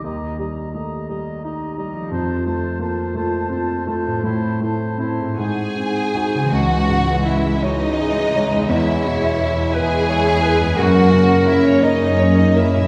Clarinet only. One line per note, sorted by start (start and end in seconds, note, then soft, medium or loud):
0.04 0.39 G4 soft
0.39 0.73 G4 soft
0.74 1.08 G4 soft
1.11 1.43 G4 soft
1.44 1.77 G4 soft
1.77 2.11 G4 soft
2.12 2.46 F4 soft
2.48 2.80 F4 soft
2.81 3.15 F4 soft
3.16 3.49 F4 medium
3.50 3.86 F4 soft
3.86 4.23 F4 soft
4.24 4.61 E4 medium
4.62 4.99 E4 soft
5.00 5.37 E4 soft
5.39 5.76 D#4 soft
5.77 6.14 D#4 soft
6.15 6.52 D#4 soft
7.63 8.00 F#4 medium
7.99 8.37 G#4 medium
8.35 8.69 D#5 medium
8.69 9.75 C#5 medium
9.74 10.08 B4 medium
10.09 10.44 C#5 medium
10.42 10.78 B4 medium
10.76 11.85 A#4 loud
11.83 12.87 D#5 medium